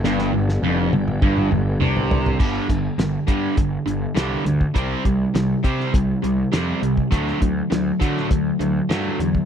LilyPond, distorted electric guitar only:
\new Staff \with { instrumentName = "Distorted electric guitar" } { \clef bass \time 4/4 \key g \major \tempo 4 = 101 g,8 g,8 f,8 g,8 g,8 g,8 c4 | <g, d g>8 <g, d>8 <g, d>8 <g, d g>8 <g, d>8 <g, d>8 <g, d g>8 <g, d>8 | <c g c'>8 <c g>8 <c g>8 <c g c'>8 <c g>8 <c g>8 <c g c'>8 <c g>8 | <d fis a>8 <d fis>8 <d fis>8 <d fis a>8 <d fis>8 <d fis>8 <d fis a>8 <d fis>8 | }